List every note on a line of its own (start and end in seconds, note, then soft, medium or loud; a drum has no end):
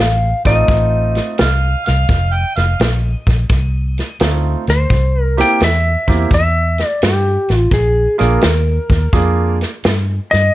0.00 0.32 A1 medium
0.00 0.42 F5 medium
0.45 0.62 A1 medium
0.45 1.34 A3 medium
0.45 1.34 C4 medium
0.45 1.34 D#4 medium
0.45 1.34 F4 medium
0.45 4.17 D#5 medium
0.45 kick medium
0.45 snare soft
0.45 closed hi-hat medium
0.68 1.19 A1 medium
0.68 kick loud
0.68 snare soft
0.68 closed hi-hat medium
1.15 snare soft
1.15 closed hi-hat medium
1.38 1.74 C2 medium
1.38 1.85 F5 medium
1.38 snare loud
1.38 closed hi-hat medium
1.86 2.04 C2 medium
1.86 2.34 F5 medium
1.86 snare soft
1.86 closed hi-hat medium
2.09 2.43 F1 medium
2.09 kick loud
2.09 snare soft
2.09 closed hi-hat medium
2.33 2.55 G5 medium
2.56 2.73 F1 medium
2.56 2.94 F5 medium
2.56 snare soft
2.56 closed hi-hat medium
2.80 3.14 A#1 loud
2.80 snare loud
2.80 closed hi-hat medium
3.27 3.43 A#1 medium
3.27 kick medium
3.27 snare soft
3.27 closed hi-hat medium
3.49 4.00 C2 medium
3.49 kick loud
3.49 snare soft
3.49 closed hi-hat medium
3.98 snare soft
3.98 closed hi-hat medium
4.20 4.54 D2 medium
4.20 4.63 A3 medium
4.20 4.63 C4 medium
4.20 4.63 D#4 medium
4.20 4.63 F4 medium
4.20 snare loud
4.20 closed hi-hat medium
4.67 4.84 D2 medium
4.67 5.23 C5 medium
4.67 snare soft
4.67 closed hi-hat medium
4.90 5.41 C2 medium
4.90 kick loud
4.90 snare soft
4.90 closed hi-hat medium
5.23 5.41 A#4 medium
5.37 5.59 A#3 medium
5.37 5.59 C4 medium
5.37 5.59 E4 medium
5.37 5.59 G4 medium
5.37 5.63 G5 medium
5.37 snare soft
5.37 closed hi-hat medium
5.60 5.95 E2 medium
5.60 6.33 E5 loud
5.60 snare loud
5.60 closed hi-hat medium
6.07 6.25 E2 medium
6.07 6.29 A#3 medium
6.07 6.29 C4 medium
6.07 6.29 E4 medium
6.07 6.29 G4 medium
6.07 kick medium
6.07 snare soft
6.07 closed hi-hat medium
6.31 6.81 E2 medium
6.31 6.87 E5 medium
6.31 kick medium
6.31 snare soft
6.31 closed hi-hat medium
6.78 snare soft
6.78 closed hi-hat medium
6.87 7.06 D5 medium
7.02 7.36 G2 medium
7.02 7.57 G4 medium
7.02 snare loud
7.02 closed hi-hat medium
7.48 7.66 A1 medium
7.48 snare soft
7.48 closed hi-hat medium
7.57 7.76 F4 medium
7.71 8.06 A#1 medium
7.71 8.20 G#4 medium
7.71 kick loud
7.71 snare soft
7.71 closed hi-hat medium
8.18 8.37 A#1 medium
8.18 8.40 A#3 medium
8.18 8.40 D4 medium
8.18 8.40 F4 medium
8.18 8.40 G#4 medium
8.18 9.57 A#4 medium
8.18 snare soft
8.18 closed hi-hat medium
8.41 8.77 D#2 loud
8.41 snare loud
8.41 closed hi-hat medium
8.90 9.07 D#2 medium
8.90 kick medium
8.90 snare soft
8.90 closed hi-hat medium
9.13 9.63 F2 medium
9.13 9.56 A#3 medium
9.13 9.56 D4 medium
9.13 9.56 F4 medium
9.13 9.56 G#4 medium
9.13 kick loud
9.13 snare soft
9.13 closed hi-hat medium
9.61 snare soft
9.61 closed hi-hat medium
9.84 10.18 G2 medium
9.84 snare loud
9.84 closed hi-hat medium
10.31 10.49 G2 medium
10.31 10.54 D#5 loud
10.31 snare soft
10.31 closed hi-hat medium